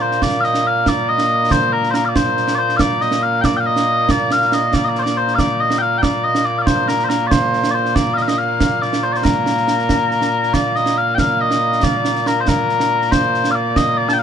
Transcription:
0.00 14.23 A#2 medium
0.00 14.23 A#3 medium
0.00 0.22 C5 medium
0.11 snare soft
0.22 0.40 D5 loud
0.22 concert bass drum medium
0.22 snare medium
0.40 0.67 D#5 loud
0.40 0.44 F5 loud
0.40 snare soft
0.54 snare medium
0.67 0.88 F5 loud
0.86 1.09 D5 loud
0.86 concert bass drum soft
0.86 snare medium
1.09 1.51 D#5 loud
1.18 snare medium
1.51 1.73 C5 loud
1.51 concert bass drum medium
1.51 snare medium
1.73 1.91 A#4 medium
1.83 snare soft
1.91 2.05 A#4 medium
1.91 1.94 C5 medium
1.91 snare medium
2.05 2.16 D5 medium
2.05 2.08 F5 medium
2.16 2.55 C5 medium
2.16 concert bass drum medium
2.16 snare loud
2.37 snare soft
2.48 snare medium
2.55 2.77 C5 medium
2.55 2.58 D5 medium
2.69 snare soft
2.77 3.01 D5 loud
2.77 2.80 F5 loud
2.77 concert bass drum medium
2.77 snare loud
3.01 3.22 D#5 medium
3.01 snare soft
3.11 snare medium
3.22 3.41 F5 loud
3.41 3.56 D5 loud
3.41 3.44 G5 loud
3.41 concert bass drum medium
3.41 snare medium
3.56 3.66 F5 medium
3.56 3.60 G5 medium
3.66 4.11 D#5 loud
3.76 snare medium
4.09 4.32 D5 loud
4.09 concert bass drum medium
4.09 snare loud
4.31 4.53 F5 medium
4.31 snare medium
4.42 snare soft
4.52 4.74 D#5 medium
4.52 snare medium
4.73 4.84 D5 medium
4.73 concert bass drum medium
4.73 snare medium
4.84 4.99 D5 medium
4.84 4.88 D#5 medium
4.95 5.02 C5 medium
4.95 snare soft
5.02 5.17 D5 loud
5.02 snare medium
5.17 5.35 C5 medium
5.28 snare soft
5.35 5.39 F5 loud
5.35 concert bass drum medium
5.35 snare medium
5.39 5.60 D5 loud
5.60 5.78 D#5 medium
5.71 snare medium
5.78 5.98 F5 loud
5.78 5.82 G5 loud
5.98 6.02 G5 medium
6.02 6.24 D5 medium
6.02 concert bass drum medium
6.02 snare medium
6.24 6.45 D#5 loud
6.35 snare medium
6.45 6.58 D5 medium
6.58 6.66 D5 medium
6.58 6.61 F5 medium
6.66 6.88 C5 loud
6.66 concert bass drum medium
6.66 snare loud
6.88 7.05 A#4 medium
6.88 snare medium
6.99 snare soft
7.05 7.09 C5 medium
7.09 7.27 A#4 medium
7.09 snare medium
7.27 7.71 C5 medium
7.27 7.31 D5 medium
7.31 concert bass drum medium
7.31 snare loud
7.53 snare soft
7.64 snare medium
7.71 7.95 C5 medium
7.71 7.74 D5 medium
7.85 snare soft
7.95 8.14 D5 loud
7.95 concert bass drum medium
7.95 snare loud
8.14 8.22 D#5 medium
8.14 8.17 F5 medium
8.14 snare soft
8.22 8.28 F5 medium
8.28 8.38 D#5 medium
8.28 snare medium
8.38 8.82 F5 loud
8.60 concert bass drum medium
8.60 snare loud
8.82 9.03 D5 medium
8.82 snare soft
8.93 snare medium
9.03 9.12 C5 medium
9.12 9.16 D5 medium
9.12 snare soft
9.16 9.24 C5 medium
9.24 10.54 A#4 medium
9.24 concert bass drum medium
9.24 snare loud
9.46 snare medium
9.57 snare soft
9.68 snare medium
9.79 snare soft
9.89 concert bass drum medium
9.89 snare medium
10.11 snare soft
10.22 snare medium
10.43 snare soft
10.54 10.76 D5 loud
10.54 concert bass drum medium
10.54 snare medium
10.76 10.97 D#5 medium
10.76 snare soft
10.86 snare medium
10.97 11.15 F5 loud
11.15 11.19 G5 loud
11.15 concert bass drum medium
11.15 snare medium
11.19 11.41 F5 loud
11.41 11.84 D#5 loud
11.51 snare medium
11.72 snare soft
11.83 12.27 D5 loud
11.83 concert bass drum medium
11.83 snare loud
12.05 snare medium
12.15 snare soft
12.26 12.41 A#4 medium
12.26 snare medium
12.41 12.48 C5 medium
12.48 13.12 A#4 loud
12.48 concert bass drum medium
12.48 snare loud
12.69 snare soft
12.80 snare medium
13.02 snare soft
13.12 13.51 C5 loud
13.12 concert bass drum medium
13.12 snare loud
13.34 snare soft
13.44 snare medium
13.51 13.76 D5 medium
13.51 13.55 F5 medium
13.76 13.97 D#5 loud
13.76 concert bass drum medium
13.76 snare medium
13.97 14.09 D5 loud
14.09 14.13 A5 medium
14.09 snare medium
14.13 14.19 G5 medium
14.19 14.23 F5 medium

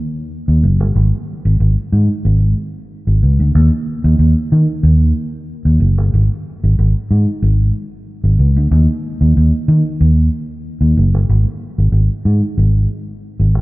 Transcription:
0.48 0.61 D#2 medium
0.63 0.80 F#1 medium
0.80 0.94 G1 medium
0.96 1.11 G#1 medium
1.45 1.58 G#1 medium
1.60 1.75 G#1 medium
1.92 2.07 G#2 medium
2.25 2.53 G#1 loud
3.07 3.20 G#1 medium
3.23 3.37 C#2 medium
3.40 3.53 D2 medium
3.55 3.69 D#2 loud
4.04 4.17 D#2 medium
4.19 4.34 D#2 medium
4.52 4.66 D#3 loud
4.83 5.11 D#2 loud
5.65 5.78 D#2 medium
5.80 5.98 F#1 medium
5.98 6.11 G1 medium
6.14 6.28 G#1 loud
6.64 6.76 G#1 medium
6.79 6.93 G#1 loud
7.11 7.25 G#2 medium
7.42 7.70 G#1 loud
8.24 8.37 G#1 medium
8.39 8.53 C#2 medium
8.56 8.69 D2 medium
8.71 8.86 D#2 loud
9.21 9.34 D#2 medium
9.37 9.51 D#2 loud
9.68 9.83 D#3 loud
10.01 10.28 D#2 loud
10.81 10.94 D#2 medium
10.97 11.14 F#1 loud
11.14 11.27 G1 medium
11.29 11.44 G#1 loud
11.78 11.91 G#1 medium
11.92 12.07 G#1 medium
12.25 12.40 G#2 medium
12.58 12.86 G#1 loud
13.40 13.55 G#1 medium
13.55 13.61 A1 medium

